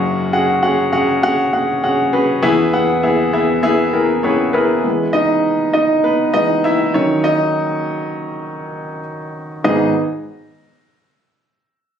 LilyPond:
<<
  \new Staff \with { instrumentName = "Grand piano" } { \time 4/4 \key gis \minor \tempo 4 = 100 << { r1 | r2. <cis' cis''>8 b'8~ | b'8 <dis' dis''>4 <dis' dis''>8 <b b'>8 <dis' dis''>8 <e' e''>8 <cis' cis''>8 | <dis' dis''>2. r4 |
r1 | } \\ { <cis' fis' gis' fis''>8 <cis' fis' gis' fis''>8 <cis' fis' gis' fis''>8 <cis' fis' gis' fis''>8 <cis' fis' gis' fis''>8 <cis' fis' gis' fis''>8 <cis' fis' gis' fis''>8 <cis' fis' gis' b'>8 | <b e' gis' e''>8 <b e' gis' fis''>8 <b e' gis' e''>8 <b e' gis' e''>8 <b e' gis' e''>8 <b e' gis' ais'>8 <b e' gis' b'>8 <b e' gis' ais'>8 | r1 | r1 |
<b dis' gis' dis''>8 r2. r8 | } >> }
  \new Staff \with { instrumentName = "Grand piano" } { \clef bass \time 4/4 \key gis \minor <fis,, fis,>2.~ <fis,, fis,>8 r8 | <e, e>1 | <e gis b>8 r2 <e gis b>8 r8 <dis fis dis'>8~ | <dis fis dis'>4 r2. |
gis,,8 r2. r8 | }
>>